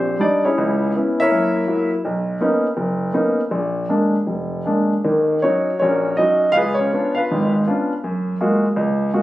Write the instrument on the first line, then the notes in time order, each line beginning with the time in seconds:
grand piano
Already playing: A#1 C4 G4 C5
0.19 G3 D4 D#4 D5
0.45 C#4 E4 G#4 C#5
0.58 C#2
0.96 B3 C#4 E4
1.20 E4 A#4 C#5 E5
1.31 F#2 A#3
1.67 F#3 A#3 E4
2.05 B1
2.41 A#3 B3 C#4 D#4
2.77 F#1
3.14 A#3 B3 C#4 D#4
3.51 A#1
3.89 G#3 A#3 D4
4.27 F1
4.66 G#3 A#3 D4
5.05 D#2 D#3
5.42 F#3 C#4 D#4 F#4 C#5
5.79 A#1 C#4 C#5
5.84 F#4 A#4
6.17 F#3 C#4 D#4 D#5
6.22 D#4 F#4
6.52 C#2 F5
6.57 F4 G#4 B4
6.75 C#5
6.80 C#4 F4
6.93 B3 C#4 D4 F4
7.15 F4 B4 F5
7.31 G#1 G#2
7.67 B3 C#4 D4 F4
8.04 F#2
8.41 G#3 A#3 F4 F#4
8.76 C#2
9.14 G#3 A#3 F4 F#4